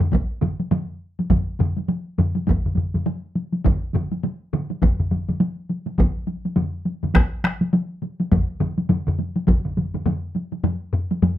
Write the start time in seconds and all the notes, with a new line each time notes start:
0.00 taiko low-mid, taiko mid, taiko high
0.12 taiko, taiko high
0.41 taiko low-mid, taiko mid, taiko high
0.60 taiko high
0.71 taiko low-mid, taiko mid, taiko high
1.19 taiko high
1.30 taiko, taiko low-mid, taiko mid, taiko high
1.59 taiko low-mid, taiko mid, taiko high
1.77 taiko high
1.89 taiko high
2.18 taiko low-mid, taiko mid, taiko high
2.35 taiko high
2.47 taiko, taiko low-mid, taiko mid, taiko high
2.66 taiko low-mid, taiko mid
2.75 taiko low-mid, taiko mid, taiko high
2.94 taiko low-mid, taiko mid, taiko high
3.06 taiko high
3.35 taiko high
3.52 taiko high
3.64 taiko, taiko low-mid, taiko mid, taiko high
3.94 taiko low-mid, taiko mid, taiko high
4.12 taiko high
4.23 taiko high
4.53 taiko low-mid, taiko mid, taiko high
4.70 taiko high
4.82 taiko, taiko low-mid, taiko mid, taiko high
5.00 taiko low-mid, taiko mid
5.11 taiko low-mid, taiko mid, taiko high
5.28 taiko low-mid, taiko mid, taiko high
5.40 taiko high
5.69 taiko high
5.87 taiko high
5.98 taiko, taiko low-mid, taiko mid, taiko high
6.27 taiko high
6.45 taiko high
6.56 taiko low-mid, taiko mid, taiko high
6.85 taiko high
7.03 taiko low-mid, taiko mid, taiko high
7.15 taiko rim, taiko, taiko high
7.44 taiko rim, taiko high
7.61 taiko high
7.73 taiko high
8.02 taiko high
8.20 taiko high
8.32 taiko, taiko low-mid, taiko mid, taiko high
8.60 taiko low-mid, taiko mid, taiko high
8.78 taiko high
8.89 taiko low-mid, taiko mid, taiko high
9.07 taiko low-mid, taiko mid
9.19 taiko high
9.36 taiko high
9.47 taiko, taiko low-mid, taiko mid, taiko high
9.65 taiko low-mid, taiko mid
9.77 taiko low-mid, taiko mid, taiko high
9.94 taiko low-mid, taiko mid, taiko high
10.06 taiko low-mid, taiko mid, taiko high
10.35 taiko high
10.52 taiko high
10.64 taiko low-mid, taiko high
10.93 taiko low-mid
11.11 taiko high
11.22 taiko low-mid, taiko high